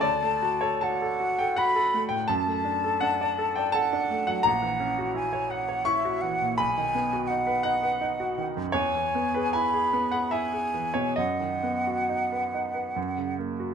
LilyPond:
<<
  \new Staff \with { instrumentName = "Flute" } { \time 3/4 \key d \major \tempo 4 = 82 a''4 fis''4 b''8 r8 | a''2 fis''4 | \key b \major fis''4 gis''8 fis''8 e''8 fis''8 | gis''4 fis''4. r8 |
gis''4 b''4 gis''4 | fis''2~ fis''8 r8 | }
  \new Staff \with { instrumentName = "Grand piano" } { \time 3/4 \key d \major << { d''8. cis''16 a''8. g''16 fis''8. g''16 | a''4 fis''8. g''16 a''8. fis''16 | \key b \major ais''2 cis'''4 | b''4. fis''4. |
cis''8. b'16 gis''8. fis''16 e''8. cis''16 | dis''2~ dis''8 r8 | } \\ { d,16 a16 fis'16 a'16 fis'16 a'16 fis'16 a'16 fis'16 a'16 a16 a,16 | fis,16 a16 d'16 a'16 d'16 d''16 a'16 d''16 a'16 d'16 a16 fis16 | ais,,16 e16 cis'16 fis'16 e'16 cis''16 fis''16 cis''16 e'16 fis'16 e16 ais,16 | b,,16 dis16 b16 fis'16 dis'16 b'16 dis'16 b'16 dis'16 fis'16 dis16 fis,16 |
e,16 e16 b16 gis'16 e'16 gis'16 b16 gis'16 e'16 gis'16 e16 b,16 | fis,16 dis16 b16 fis'16 dis'16 b'16 dis'16 b'16 fis,16 cis16 ais16 fis'16 | } >> }
>>